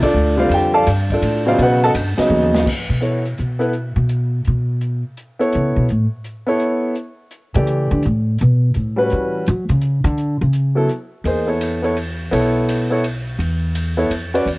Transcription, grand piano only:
0.02 0.36 D4 medium
0.02 0.36 F4 medium
0.02 0.36 A4 medium
0.02 0.36 D5 medium
0.37 0.84 D3 medium
0.37 0.84 G3 medium
0.37 0.84 C4 medium
0.37 0.84 F4 medium
0.37 0.51 C5 medium
0.37 0.51 D5 medium
0.37 0.51 F5 medium
0.54 0.76 G4 medium
0.54 0.75 G5 medium
0.74 0.86 A4 medium
0.74 0.87 D5 medium
0.74 0.86 F5 medium
0.74 0.86 A5 loud
1.12 1.45 D4 medium
1.12 1.45 F4 medium
1.12 1.45 A4 medium
1.12 1.44 D5 medium
1.45 1.92 C#3 medium
1.45 1.92 F#3 medium
1.45 1.92 B3 medium
1.45 1.93 D#4 medium
1.45 1.60 F4 medium
1.45 1.59 C5 medium
1.45 1.59 D5 medium
1.45 1.59 F5 medium
1.62 1.83 F#4 medium
1.62 1.83 B4 medium
1.62 1.83 D#5 medium
1.62 1.83 F#5 medium
1.84 1.91 A4 medium
1.84 1.91 D#5 medium
1.84 1.91 F#5 medium
1.84 1.91 A5 loud
2.17 2.63 C#3 medium
2.17 2.64 F#3 medium
2.17 2.64 B3 medium
2.17 2.64 D#4 medium
3.01 3.22 B3 soft
3.01 3.23 E4 soft
3.01 3.23 A4 soft
3.01 3.23 C#5 soft
3.59 3.71 B3 medium
3.59 3.72 E4 medium
3.59 3.72 A4 medium
3.59 3.72 B4 medium
5.39 5.86 B3 medium
5.39 5.86 E4 medium
5.39 5.86 A4 medium
5.39 5.86 C#5 medium
6.46 6.93 B3 medium
6.46 6.93 E4 medium
6.46 6.94 A4 medium
6.46 6.94 C#5 medium
7.54 8.00 E3 medium
7.54 8.01 A3 medium
7.54 8.01 G4 medium
7.54 8.01 D5 medium
8.96 9.43 G3 medium
8.96 9.43 C#4 medium
8.96 9.44 F#4 medium
8.96 9.44 B4 medium
10.75 10.87 F#3 medium
10.75 10.87 B3 medium
10.75 10.87 E4 medium
10.75 10.88 A4 medium
11.25 11.46 A#3 medium
11.25 11.46 D#4 soft
11.25 11.46 G#4 soft
11.25 11.47 C5 medium
11.47 11.79 B3 medium
11.47 11.79 E4 soft
11.47 11.79 A4 medium
11.47 11.80 C#5 medium
11.82 11.94 B3 medium
11.82 11.95 E4 medium
11.82 11.95 A4 medium
11.82 11.96 C#5 medium
12.31 12.86 B3 medium
12.31 12.87 E4 medium
12.31 12.87 A4 medium
12.31 12.87 C#5 medium
12.90 13.02 B3 medium
12.90 13.03 E4 medium
12.90 13.03 A4 medium
12.90 13.03 C#5 medium
13.97 14.10 B3 medium
13.97 14.10 E4 medium
13.97 14.10 A4 medium
13.97 14.10 C#5 medium
14.34 14.46 C#4 medium
14.34 14.46 F#4 medium
14.34 14.46 B4 medium
14.34 14.47 D5 medium

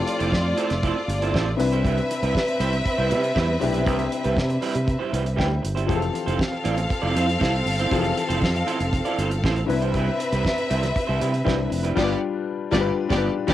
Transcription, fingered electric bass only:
0.21 0.30 F1 medium
0.33 0.52 F2 loud
0.71 0.90 F1 medium
1.08 1.35 G1 loud
1.35 1.54 A1 medium
1.59 1.99 C2 medium
2.23 2.32 C2 loud
2.60 2.80 C2 loud
2.98 3.13 C2 medium
3.11 3.31 C3 loud
3.36 3.56 E2 loud
3.62 3.87 B1 medium
3.87 4.07 C2 loud
4.25 4.35 C2 loud
4.37 4.57 C3 loud
4.75 4.95 C3 medium
5.13 5.39 C2 loud
5.39 5.59 D2 loud
5.64 5.89 G1 medium
5.89 6.09 F1 loud
6.27 6.37 F1 loud
6.65 6.85 A1 loud
7.03 7.13 F1 medium
7.16 7.36 F2 loud
7.41 7.61 C2 loud
7.66 7.86 G1 medium
7.92 8.11 F1 loud
8.30 8.40 F1 loud
8.42 8.62 F2 loud
8.80 9.00 F1 medium
9.18 9.44 G1 loud
9.44 9.64 A1 loud
9.68 10.08 C2 medium
10.32 10.42 C2 medium
10.71 10.90 C2 loud
11.09 11.19 C2 loud
11.22 11.41 C3 loud
11.47 11.66 C2 loud
11.71 11.91 F1 medium
11.97 12.14 G1 loud
12.73 12.90 G1 loud
13.10 13.28 G1 loud
13.48 13.54 G1 loud

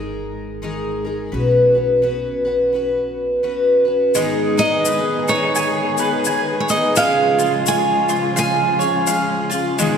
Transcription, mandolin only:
4.15 6.96 G#3 medium
4.57 5.27 D#4 medium
4.85 5.98 B4 medium
5.28 6.69 D#4 medium
5.56 6.26 G#5 medium
5.99 7.05 B4 medium
6.27 8.36 G#5 medium
6.70 7.06 D#4 medium
6.97 9.78 G#3 medium
7.38 8.08 F4 medium
7.67 8.78 C#5 medium
8.09 9.48 F4 medium
8.36 9.06 F5 medium
8.79 9.87 C#5 medium
9.07 9.87 F5 medium
9.50 9.87 F4 medium
9.79 9.98 G#3 medium

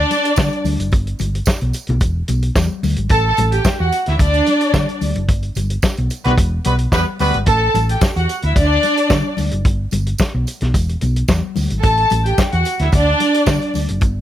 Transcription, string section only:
0.00 0.61 D4 loud
0.00 0.61 D5 loud
3.10 3.32 A4 loud
3.10 3.32 A5 loud
3.52 3.62 G4 medium
3.52 3.62 G5 medium
3.80 3.90 F#4 medium
3.80 3.90 F#5 medium
4.07 4.17 E4 medium
4.07 4.18 E5 medium
4.20 4.98 D4 loud
4.20 4.98 D5 loud
7.48 7.69 A4 loud
7.48 7.70 A5 loud
7.89 8.00 G4 medium
7.89 8.00 G5 medium
8.15 8.26 F#4 medium
8.15 8.26 F#5 medium
8.44 8.54 E4 medium
8.44 8.54 E5 medium
8.57 9.34 D4 loud
8.57 9.35 D5 loud
11.83 12.05 A4 loud
11.83 12.05 A5 loud
12.25 12.35 G4 medium
12.25 12.36 G5 medium
12.52 12.62 F#4 medium
12.52 12.63 F#5 loud
12.80 12.90 E4 medium
12.80 12.90 E5 medium
12.92 13.70 D4 loud
12.92 13.71 D5 loud

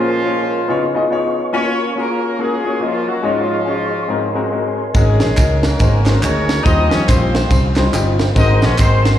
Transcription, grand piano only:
0.00 0.48 A#2 medium
0.00 0.12 A#3 loud
0.00 0.12 C#4 medium
0.00 0.12 F4 medium
0.00 0.12 G#4 medium
0.00 0.13 C5 loud
0.24 0.54 A#3 medium
0.24 0.54 C#4 medium
0.24 0.54 F4 medium
0.24 0.54 G#4 medium
0.24 0.55 C#5 medium
0.68 1.33 C#3 medium
0.68 0.83 B3 medium
0.68 0.84 D#4 medium
0.68 0.84 F4 medium
0.68 0.84 G#4 medium
0.68 0.85 C#5 loud
0.94 1.04 B3 medium
0.94 1.04 D#4 medium
0.94 1.04 F4 medium
0.94 1.05 G#4 medium
0.94 1.05 D#5 loud
1.10 1.40 B3 medium
1.10 1.40 D#4 medium
1.10 1.40 F4 medium
1.10 1.41 G#4 medium
1.10 1.41 C#5 loud
1.53 1.82 A#3 loud
1.53 1.82 C#4 loud
1.53 1.83 F4 loud
1.53 1.83 F#4 medium
1.53 1.83 C#5 loud
1.95 2.25 A#3 medium
1.95 2.25 C#4 medium
1.95 2.26 F4 medium
1.95 2.26 F#4 medium
1.95 2.26 G#4 medium
2.38 2.54 A#3 medium
2.38 2.54 C#4 medium
2.38 2.54 F4 medium
2.38 2.55 F#4 medium
2.38 2.55 A#4 medium
2.64 2.75 A#3 medium
2.64 2.75 C#4 medium
2.64 2.75 F4 medium
2.64 2.75 F#4 medium
2.64 2.76 C#5 medium
2.80 3.10 A#3 medium
2.80 3.10 C#4 medium
2.80 3.10 F4 medium
2.80 3.10 F#4 medium
2.80 3.11 D#5 medium
3.22 3.89 G#2 medium
3.22 3.52 G#3 loud
3.22 3.53 C#4 medium
3.22 3.53 D#4 loud
3.22 3.53 F#4 medium
3.22 3.53 C#5 loud
3.65 3.95 G#3 medium
3.65 3.95 C#4 medium
3.65 3.96 D#4 medium
3.65 3.96 F#4 medium
3.65 3.96 C#5 medium
4.08 4.74 G#2 medium
4.08 4.24 G#3 medium
4.08 4.24 C4 medium
4.08 4.25 D#4 medium
4.08 4.25 F#4 medium
4.08 4.25 A#4 medium
4.34 4.45 G#3 medium
4.34 4.45 C4 medium
4.34 4.45 D#4 medium
4.34 4.46 F#4 medium
4.34 4.46 A#4 loud
4.50 4.80 G#3 medium
4.50 4.81 C4 medium
4.50 4.81 D#4 medium
4.50 4.81 F#4 medium
4.50 4.82 A#4 medium
4.94 5.60 G#2 medium
4.94 5.24 G#3 loud
4.94 5.24 C#4 medium
4.94 5.24 D#4 medium
4.94 5.24 F#4 medium
4.94 5.24 A#4 loud
5.36 5.66 G#3 medium
5.36 5.66 C#4 medium
5.36 5.67 D#4 medium
5.36 5.67 F#4 medium
5.36 5.67 A#4 medium
5.80 5.96 G#3 medium
5.80 5.96 C#4 medium
5.80 5.96 D#4 medium
5.80 5.96 F#4 medium
5.80 5.96 C5 medium
6.06 6.16 G#3 medium
6.06 6.16 C#4 medium
6.06 6.16 D#4 medium
6.06 6.17 F#4 medium
6.06 6.17 C5 medium
6.22 6.51 G#3 medium
6.22 6.52 C#4 medium
6.22 6.52 D#4 medium
6.22 6.52 F#4 medium
6.22 6.52 G#4 medium
6.64 7.31 D#3 medium
6.64 6.94 G3 loud
6.64 6.94 C#4 medium
6.64 6.95 D#4 loud
6.64 6.95 F4 medium
6.64 6.95 C5 loud
7.06 7.36 G3 medium
7.06 7.37 C#4 medium
7.06 7.37 D#4 medium
7.06 7.37 F4 medium
7.06 7.38 C5 medium
7.49 7.66 G3 medium
7.49 7.66 C#4 medium
7.49 7.66 D#4 medium
7.49 7.66 F4 medium
7.49 7.67 C5 medium
7.76 7.87 G3 medium
7.76 7.87 C#4 medium
7.76 7.87 D#4 medium
7.76 7.87 F4 medium
7.76 7.87 C5 loud
7.92 8.22 G3 medium
7.92 8.22 C#4 medium
7.92 8.22 D#4 medium
7.92 8.23 F4 medium
7.92 8.23 G4 loud
8.35 9.01 G#2 medium
8.35 8.64 G#3 loud
8.35 8.65 C4 medium
8.35 8.65 D#4 loud
8.35 8.65 F#4 medium
8.35 8.65 A#4 loud
8.78 9.07 G#3 medium
8.78 9.08 C4 medium
8.78 9.08 D#4 medium
8.78 9.08 F#4 medium
8.78 9.09 A#4 medium

